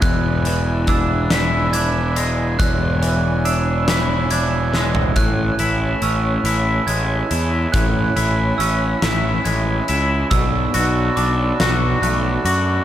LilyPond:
<<
  \new Staff \with { instrumentName = "Glockenspiel" } { \time 6/8 \key a \major \tempo 4. = 47 fis'''4 e'''4 gis'''4 | fis'''4 e'''4 gis'''4 | fis'''4 e'''4 gis'''4 | fis'''4 e'''4 gis'''4 |
e'''4 d'''4 fis'''4 | }
  \new Staff \with { instrumentName = "Harmonium" } { \time 6/8 \key a \major << { b''2. | cis''2. | a''2. | b''2. |
b''2. | } \\ { <e' d'' gis''>2.~ | <e' d'' gis''>2. | <e' cis'' gis''>2.~ | <e' cis'' gis''>2. |
<fis' d'' a''>2. | } >> }
  \new Staff \with { instrumentName = "Clean electric guitar" } { \time 6/8 \key a \major e,8 e8 d'8 e'8 d'8 gis8 | e,8 e8 d'8 e'8 d'8 gis8 | a,8 e'8 cis'8 e'8 gis8 e'8 | a,8 e'8 cis'8 e'8 gis8 e'8 |
b,8 fis'8 d'8 fis'8 a8 fis'8 | }
  \new Staff \with { instrumentName = "Picked electric bass" } { \clef bass \time 6/8 \key a \major e,,2. | e,,2. | a,,8 a,,8 a,,8 a,,8 a,,8 e,8 | a,,8 a,,8 a,,8 a,,8 a,,8 cis,8 |
b,,8 b,,8 b,,8 b,,8 b,,8 fis,8 | }
  \new DrumStaff \with { instrumentName = "Drums" } \drummode { \time 6/8 <hh bd>8 hh8 <hh bd>8 <hh sn>8 hh8 hh8 | <hh bd>8 hh8 hh8 <hh sn>8 hh8 sn16 tomfh16 | <hh bd>8 hh8 hh8 hh8 hh8 hh8 | <hh bd>8 hh8 hh8 <hh sn>8 hh8 hh8 |
<hh bd>8 hh8 hh8 <hh sn>8 hh8 hh8 | }
>>